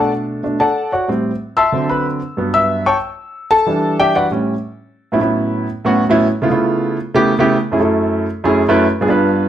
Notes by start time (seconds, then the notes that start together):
Already playing: B2 A3 D4 A4 D5 F#5 A5
0.43 B2 A3 D4
0.60 A4 D5 F#5 A5
0.92 F#4 C#5 D5 F#5
1.08 A2 G3 C4
1.57 E5 A5 C6 E6
1.72 D3 F#3 C4
1.89 B4 B5
2.37 G2 F#3 B3
2.54 E5 E6
2.86 C#5 G5 A5 C#6
3.51 A4 A5
3.66 E3 G3 D4
4.00 G4 D5 E5 G5
4.15 F#4 B4 D5 F#5
4.31 A2 G3 C#4
5.12 A2 F#3 B3 C#4 E4
5.20 A2 F#3 B3 C#4 E4
5.85 A2 F#3 B3 C#4 F#4
6.09 A2 F#3 B3 C#4 E4
6.42 C#3 A3 B3 E4 F4
6.50 C#3 A3 B3 E4 F4
7.14 C#3 A3 B3 E4 G4
7.39 C#3 A3 B3 E4 G4
7.71 F#2 A3 C#4 E4 G#4
7.79 F#2 A3 C#4 E4 A4
8.44 F#2 A3 C#4 E4 G#4
8.68 F#2 A3 C#4 E4 B4
9.01 G2 B3 D4 F4 G#4
9.08 G2 B3 D4 F4 B4